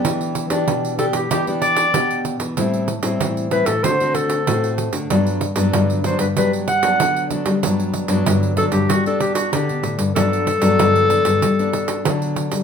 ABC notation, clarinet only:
X:1
M:4/4
L:1/16
Q:1/4=95
K:G
V:1 name="Clarinet"
z6 A G G2 d4 z2 | z6 B A c2 A4 z2 | z6 c B B2 f4 z2 | z6 A G F A G F G3 z |
A12- A2 z2 |]